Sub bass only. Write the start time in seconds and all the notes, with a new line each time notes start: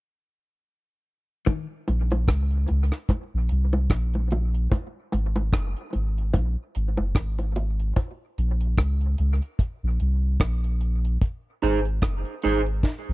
1.89 A#1
2.29 C#2
2.70 C#2
3.34 A#1
3.51 C2
3.91 A#1
5.14 G#1
5.53 F#1
5.95 G#1
6.35 A#1
6.76 G#1
6.99 F#1
7.16 G#1
8.38 A#1
8.78 C#2
9.19 C#2
9.83 A#1
10.01 C2
10.41 A#1
11.63 G#1
12.03 F#1
12.45 G#1
13.09 A#1